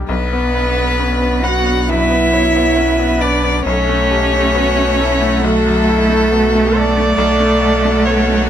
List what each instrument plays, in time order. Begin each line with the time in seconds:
Already playing: grand piano B1 G3 D4 G4
0.06 grand piano B1, sub bass B1, cello B3, string section B3 D4 F#4, violin B4
0.33 grand piano B3
0.55 grand piano B4
0.77 grand piano B3
0.99 grand piano C#4
1.22 grand piano B3
1.42 cello F#4, grand piano B4, violin F#5
1.66 grand piano B3
1.87 grand piano F#2, cello E4, viola B4, violin E5
2.11 grand piano B3
2.33 grand piano B4, viola C#5
2.56 grand piano B3
2.77 grand piano C#4, viola B4
2.99 grand piano B3
3.20 cello D4, grand piano B4, violin D5
3.43 grand piano B3
3.64 sub bass B1, grand piano B1, string section A3 E5 F#5, cello C#4, viola A4, violin C#5
3.89 grand piano A3
4.10 viola G4, grand piano A4
4.33 grand piano A3
4.55 grand piano B3, viola F#4
4.76 grand piano A3
4.99 viola E4, grand piano A4
5.22 grand piano A3
5.42 grand piano B1, cello A3, viola F#4, violin A4
5.66 grand piano F#2
5.89 viola E4, grand piano A4
6.10 grand piano A3
6.32 grand piano B3, viola F#4
6.55 grand piano A3
6.76 grand piano A4, viola D5
6.97 grand piano A3
7.17 sub bass B1, grand piano B1, cello A3, string section A3 F#4 F#5, violin A4
7.40 grand piano A3
7.63 grand piano A4
7.85 grand piano A3
8.05 grand piano B3, viola C#5
8.29 grand piano A3